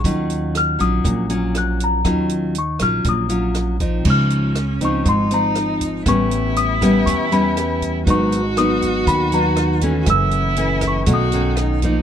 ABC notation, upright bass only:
X:1
M:4/4
L:1/8
Q:1/4=120
K:Ebm
V:1 name="Upright bass" clef=bass
E,,3 B,,, B,,,4 | E,,3 B,,, B,,,4 | D,,4 A,,,4 | =A,,,4 =E,,4 |
A,,,4 E,,4 | G,,,4 =B,,,4 |]